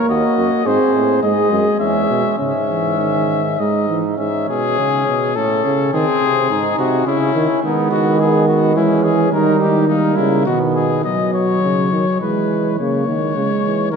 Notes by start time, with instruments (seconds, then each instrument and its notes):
Already playing: trombone A#3
0.09 euphonium D#2, flugelhorn F#4, trumpet D#5
0.38 euphonium F#2
0.65 euphonium G#2, trombone C4, flugelhorn G#4, trumpet C5
0.94 euphonium A2
1.23 euphonium G#2, trombone G#3, flugelhorn G#4, trumpet D#5
1.52 euphonium F#2
1.79 euphonium E2, trombone G#3, flugelhorn C#4, trumpet E5
2.10 euphonium B2
2.39 euphonium G#2, trombone C#3, flugelhorn C#4, trumpet E5
2.70 trombone E3
3.00 trombone D#3
3.59 euphonium G#2, trombone G#3, flugelhorn D#4, trumpet D#5
3.90 trombone E3
4.18 euphonium G#2, flugelhorn C#4, trumpet E5
4.48 euphonium B2, trumpet G#4
4.79 euphonium C#3
5.07 euphonium B2
5.35 euphonium A2, flugelhorn C#4, trumpet A4
5.65 euphonium C#3
5.92 euphonium D#3, flugelhorn C4, trumpet G#4
6.23 euphonium C3
6.50 euphonium G#2, flugelhorn D#4
6.78 euphonium C3, trumpet F#4
7.06 euphonium C#3, flugelhorn C#4, trumpet E4
7.34 euphonium D#3
7.62 euphonium D#3, trombone G#3, flugelhorn B3, trumpet D#4
7.91 euphonium D#3, trumpet F#4
8.20 flugelhorn B3, trumpet G#4
8.48 trumpet F#4
8.76 euphonium E3, trombone G#3, flugelhorn C#4, trumpet E4
9.04 trumpet G#4
9.32 euphonium D#3, trombone G3, flugelhorn D#4, trumpet A#4
9.60 trumpet G4
9.87 trombone G3, flugelhorn A#3, trumpet D#4
10.16 euphonium C#3, trumpet E4
10.45 euphonium B2, trombone D#3, flugelhorn B3, trumpet F#4
10.74 trumpet G#4
11.04 euphonium B2, trombone F#3, trumpet D#5
11.34 trumpet C#5
11.63 euphonium C#3
11.92 euphonium D#3
12.21 euphonium E3, trombone G#3, trumpet B4
12.79 euphonium C#3, trombone A#3, trumpet C#5
13.08 euphonium D#3
13.36 euphonium C#3, trombone G#3
13.65 euphonium E3
13.92 euphonium D#3, trumpet A#4